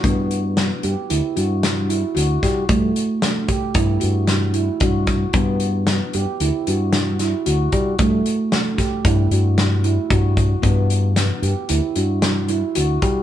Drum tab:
HH |xxxxxxxxxx|xxxxxxxxxx|xxxxxxxxxx|xxxxxxxxxx|
SD |--o---o--o|--o---o--o|--o---oo--|--oo--o---|
BD |o--------o|o--oo---oo|o--------o|o--oo---oo|

HH |xxxxxxxxxx|
SD |--o---o---|
BD |o--------o|